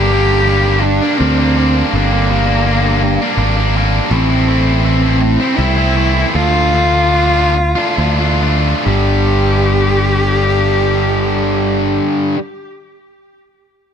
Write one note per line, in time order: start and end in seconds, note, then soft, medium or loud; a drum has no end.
0.00 0.99 G1 loud
0.00 0.48 G2 loud
0.00 0.11 D3 loud
0.00 0.12 G3 medium
0.00 0.13 A#3 medium
0.00 0.14 D4 medium
0.00 0.82 G4 loud
0.12 0.48 D3 medium
0.12 0.49 G3 medium
0.12 0.49 A#3 medium
0.12 0.50 D4 medium
0.48 1.02 G2 medium
0.48 0.83 D3 loud
0.48 0.67 G3 loud
0.48 0.66 A#3 loud
0.48 0.65 D4 loud
0.66 0.84 G3 medium
0.66 0.83 A#3 medium
0.66 0.84 D4 medium
0.81 1.19 D4 loud
0.81 muted distorted electric guitar stroke medium
1.02 1.40 G3 medium
1.02 1.38 A#3 medium
1.02 1.37 D4 medium
1.17 1.82 D2 loud
1.17 1.92 C4 loud
1.38 1.57 G3 medium
1.38 1.56 A#3 medium
1.38 1.57 D4 medium
1.56 1.93 D3 medium
1.56 1.94 G3 medium
1.56 1.94 A#3 loud
1.56 1.94 D4 loud
1.90 3.17 G1 loud
1.90 2.48 G2 loud
1.90 3.73 A#3 loud
1.94 2.28 D3 loud
1.94 2.13 G3 loud
1.94 2.11 A#3 loud
1.94 2.10 D4 loud
2.11 2.30 G3 medium
2.11 2.30 A#3 medium
2.11 2.31 D4 medium
2.30 2.65 D3 medium
2.30 2.66 G3 medium
2.30 2.66 A#3 medium
2.30 2.66 D4 medium
2.66 3.20 G2 loud
2.66 3.02 D3 loud
2.66 2.85 G3 medium
2.66 2.84 A#3 loud
2.66 2.83 D4 loud
2.84 3.02 G3 medium
2.84 3.02 A#3 medium
2.84 3.03 D4 medium
3.03 muted distorted electric guitar stroke medium
3.21 3.58 G3 medium
3.21 3.57 A#3 medium
3.21 3.56 D4 medium
3.38 4.00 G#1 loud
3.57 3.75 G3 medium
3.57 3.76 A#3 medium
3.57 3.76 D4 medium
3.75 4.09 D3 medium
3.75 4.10 G3 medium
3.75 4.10 A#3 medium
3.75 4.10 D4 medium
4.10 5.37 A1 loud
4.10 4.65 A2 medium
4.10 4.47 E3 loud
4.10 4.31 A3 loud
4.10 4.80 C4 loud
4.10 4.29 C4 loud
4.10 4.29 E4 loud
4.30 4.48 A3 medium
4.30 4.48 C4 medium
4.30 4.50 E4 medium
4.48 4.84 E3 medium
4.48 4.85 A3 medium
4.48 4.84 C4 medium
4.48 4.86 E4 medium
4.84 5.40 A2 loud
4.84 5.20 E3 loud
4.84 5.04 A3 loud
4.84 5.58 C4 medium
4.84 5.02 C4 loud
4.84 5.01 E4 loud
5.03 5.21 A3 medium
5.03 5.21 C4 medium
5.03 5.21 E4 medium
5.21 muted distorted electric guitar stroke medium
5.40 5.78 A3 medium
5.40 5.77 C4 medium
5.40 5.76 E4 medium
5.57 6.24 C2 medium
5.57 6.36 E4 loud
5.77 5.96 A3 medium
5.77 5.96 C4 medium
5.77 5.96 E4 medium
5.96 6.33 E3 medium
5.96 6.35 A3 medium
5.96 6.33 C4 medium
5.96 6.33 E4 medium
6.34 7.74 D2 loud
6.34 6.73 D3 loud
6.34 6.54 A3 loud
6.34 6.54 D4 medium
6.34 8.41 F4 loud
6.34 6.53 F4 loud
6.54 6.73 A3 medium
6.54 6.74 D4 medium
6.54 6.74 F4 medium
6.74 7.12 D3 medium
6.74 7.13 A3 medium
6.74 7.13 D4 medium
6.74 7.15 F4 medium
7.13 7.54 D3 medium
7.13 7.35 A3 medium
7.13 7.34 D4 loud
7.13 7.33 F4 loud
7.35 7.54 A3 medium
7.35 7.54 D4 medium
7.35 7.55 F4 medium
7.55 muted distorted electric guitar stroke soft
7.76 8.19 A3 medium
7.76 8.18 D4 medium
7.76 8.17 F4 medium
7.98 8.73 D2 loud
8.19 8.40 A3 medium
8.19 8.40 D4 medium
8.19 8.41 F4 medium
8.41 8.83 D3 medium
8.41 8.83 A3 medium
8.41 8.83 D4 loud
8.41 8.84 F4 medium
8.85 11.99 G1 loud
8.85 12.35 G2 medium
8.85 12.37 D3 medium
8.85 11.97 G4 loud
8.89 12.39 G3 loud